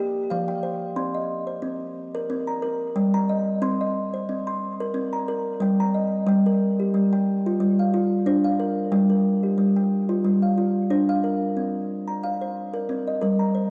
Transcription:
Already playing: A#3 G4 G5
0.31 F3 F5
0.48 G5
0.63 C5
0.96 C4 C6
1.15 D#5
1.47 C5
1.62 C4
2.15 A#4
2.30 C4
2.47 A#5
2.62 A#4
2.96 G3 G5
3.14 A#5
3.29 D#5
3.62 C4 C6
3.81 D#5
4.14 C5
4.29 C4
4.47 C6
4.80 A#4
4.94 C4
5.13 A#5
5.29 A#4
5.61 G3 G5
5.80 A#5
5.95 D#5
6.27 G3 G5
6.46 A#4
6.80 G4
6.94 G3
7.13 G5
7.46 F4
7.60 G3
7.79 F5
7.94 F4
8.26 D4 C5
8.44 F5
8.60 A#4
8.92 G3 G5
9.10 A#4
9.43 G4
9.58 G3
9.76 G5
10.09 F4
10.25 G3
10.42 F5
10.58 F4
10.90 D4 C5
11.09 F5
11.24 A#4
11.57 C4
12.07 A#5
12.23 F5
12.42 C5
12.74 A#4
12.89 C4
13.08 D#5
13.22 G3 A#4
13.39 A#5
13.55 C5

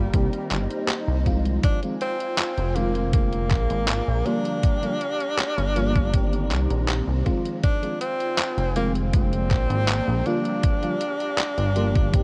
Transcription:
Already playing: G3 G4 F5 A#5
0.12 C2 D#3 G3 A#3 C4 D#4 G4 C5, kick, closed hi-hat
0.33 closed hi-hat
0.51 G1, clap, closed hi-hat
0.70 closed hi-hat
0.88 clap, closed hi-hat
1.08 C2
1.25 D#3 F3 G#3 C4 F4, kick, closed hi-hat
1.45 closed hi-hat
1.63 D4 F4 F5 G#5, kick, closed hi-hat
1.82 D#3 F3 G#3 C4 F4, closed hi-hat
2.01 C4, closed hi-hat
2.20 closed hi-hat
2.38 clap, closed hi-hat
2.58 F1, closed hi-hat
2.75 D#3 F3 G#3 A#3 C4 F4, closed hi-hat
2.95 closed hi-hat
3.12 D3 F3 G#3 A#3 F4 G#4 D5 A#5, kick, closed hi-hat
3.33 closed hi-hat
3.51 A#1, kick, clap, closed hi-hat
3.70 G#1, closed hi-hat
3.88 clap, closed hi-hat
4.08 A#1
4.25 D3 F3 G3 A#3 D4 F4 G4 F5, closed hi-hat
4.45 closed hi-hat
4.63 kick, closed hi-hat
4.82 D3 F3 G3 A#3 F4, closed hi-hat
5.01 closed hi-hat
5.20 closed hi-hat
5.38 clap, closed hi-hat
5.58 G1, closed hi-hat
5.75 D3 F3 G3 A#3 F4, closed hi-hat
5.95 kick, closed hi-hat
6.12 D#3 G3 A#3 C4 G4 C5, kick, closed hi-hat
6.33 closed hi-hat
6.51 C2, clap, closed hi-hat
6.70 A#1, closed hi-hat
6.88 clap, closed hi-hat
7.08 C2
7.25 D#3 F3 G#3 C4 F4, kick, closed hi-hat
7.45 closed hi-hat
7.63 D4 F4 F5 G#5, kick, closed hi-hat
7.82 D#3 F3 G#3 C4 F4, closed hi-hat
8.01 C4, closed hi-hat
8.20 closed hi-hat
8.38 clap, closed hi-hat
8.58 F1, closed hi-hat
8.75 D#3 F3 G#3 A#3 C4 F4, closed hi-hat
8.95 closed hi-hat
9.12 D3 F3 G#3 A#3 C4 F4 G#4 D5 A#5, kick, closed hi-hat
9.33 closed hi-hat
9.51 A#1, kick, clap, closed hi-hat
9.70 G#1, closed hi-hat
9.88 clap, closed hi-hat
10.08 A#1
10.25 D3 F3 G3 A#3 D4 F4 G4 F5 A#5, closed hi-hat
10.45 closed hi-hat
10.63 kick, closed hi-hat
10.82 D3 F3 G3 A#3 F4, closed hi-hat
11.01 closed hi-hat
11.20 closed hi-hat
11.38 clap, closed hi-hat
11.58 G1, closed hi-hat
11.75 D3 F3 G3 A#3 F4, closed hi-hat
11.95 kick, closed hi-hat
12.12 D#3 G3 A#3 C4 G4 A#4 C5 C6, kick, closed hi-hat

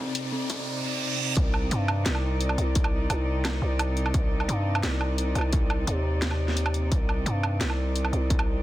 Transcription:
Already playing: C3 C4 D#4 D5, riser
0.15 closed hi-hat
0.32 C4
0.50 kick, closed hi-hat
0.67 reverse cymbal
1.36 C2, kick, closed hi-hat
1.54 low woodblock
1.71 G2, closed hi-hat
1.88 low woodblock
2.06 C2, snare, closed hi-hat
2.15 low woodblock
2.40 closed hi-hat
2.49 low woodblock
2.58 C2, closed hi-hat
2.75 kick, closed hi-hat
2.84 low woodblock
3.10 C2, closed hi-hat, low woodblock
3.45 snare, closed hi-hat, low woodblock
3.62 C2
3.79 closed hi-hat, low woodblock
3.97 closed hi-hat
4.06 low woodblock
4.14 C2, kick, closed hi-hat
4.40 low woodblock
4.49 G2, closed hi-hat
4.75 low woodblock
4.83 C2, snare, closed hi-hat
5.01 low woodblock
5.18 closed hi-hat
5.35 C2, closed hi-hat, low woodblock
5.38 low woodblock
5.41 low woodblock
5.53 kick, closed hi-hat
5.70 low woodblock
5.87 D#2, closed hi-hat
6.22 snare, closed hi-hat
6.31 low woodblock
6.48 snare
6.57 closed hi-hat
6.66 low woodblock
6.74 closed hi-hat
6.92 C2, kick, closed hi-hat
7.09 low woodblock
7.26 G2, closed hi-hat
7.43 low woodblock
7.61 C2, snare, closed hi-hat
7.70 low woodblock
7.96 closed hi-hat
8.05 low woodblock
8.13 C2, closed hi-hat
8.30 kick, closed hi-hat
8.39 low woodblock

